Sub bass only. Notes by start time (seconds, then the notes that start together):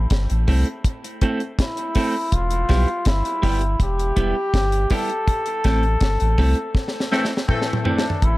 0.11 G1
0.31 A1
0.48 C2
2.33 E1
2.70 B1
3.07 G1
3.44 G1
3.80 E1
4.17 E1
4.54 G1
5.65 A1
6.02 G1
6.21 A1
6.39 C2
8.23 A1